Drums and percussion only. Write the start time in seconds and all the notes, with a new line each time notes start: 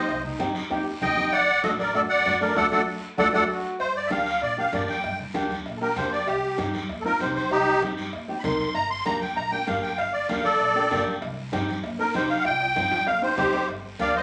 0.09 cowbell, long guiro
0.25 high conga, low conga
0.40 cowbell, high conga, short guiro
0.55 high conga, short guiro
0.71 cowbell, high conga, long guiro
1.02 cowbell, high conga, low conga, short guiro
1.17 high conga, short guiro
1.33 cowbell, long guiro
1.49 high conga
1.64 cowbell, high conga, short guiro
1.79 high conga, short guiro
1.94 cowbell, high conga, long guiro
2.25 cowbell, high conga, low timbale, short guiro
2.41 high conga, short guiro
2.56 high conga, high timbale, long guiro
2.71 high conga, high timbale, long guiro
3.18 high conga, high timbale, long guiro
3.33 high conga, high timbale, long guiro
3.80 cowbell, long guiro
3.95 high conga
4.10 cowbell, high conga, short guiro
4.26 short guiro
4.42 cowbell, high conga, long guiro
4.73 cowbell, high conga, low timbale, short guiro
4.88 high conga, short guiro
5.04 cowbell, long guiro
5.19 high conga, low conga
5.34 cowbell, high conga, short guiro
5.50 high conga, short guiro
5.66 cowbell, high conga, long guiro
5.96 cowbell, high conga, low conga, short guiro
6.12 short guiro
6.28 cowbell, long guiro
6.43 high conga
6.58 cowbell, high conga, short guiro
6.74 high conga, short guiro
6.89 cowbell, high conga, long guiro
7.20 cowbell, high conga, short guiro
7.36 high conga, short guiro
7.51 cowbell, long guiro
7.82 cowbell, high conga, short guiro
7.97 short guiro
8.13 cowbell, high conga, long guiro
8.44 cowbell, high conga, low conga, low timbale, short guiro
8.59 short guiro
8.75 cowbell, long guiro
8.90 high conga
9.06 cowbell, high conga, short guiro
9.21 high conga, short guiro
9.37 cowbell, high conga, long guiro
9.67 cowbell, high conga, low timbale, short guiro
9.83 short guiro
9.98 cowbell, long guiro
10.14 high conga
10.29 cowbell, high conga, short guiro
10.45 high conga, short guiro
10.60 cowbell, high conga, long guiro
10.91 cowbell, high conga, low conga, low timbale, short guiro
11.06 high conga, short guiro
11.22 cowbell, long guiro
11.38 high conga
11.53 cowbell, high conga, short guiro
11.68 high conga, short guiro
11.84 cowbell, high conga, long guiro
12.14 cowbell, high conga, short guiro
12.30 short guiro
12.45 cowbell, high timbale, long guiro
12.60 high conga, high timbale
12.76 cowbell, high conga, short guiro
12.91 high conga, high timbale, short guiro
13.07 cowbell, high conga, low timbale, long guiro
13.22 low timbale
13.38 cowbell, high conga, low conga, low timbale, short guiro
13.53 low timbale, short guiro
13.68 cowbell, long guiro
13.84 high conga
13.99 cowbell, high conga, short guiro
14.15 high conga, short guiro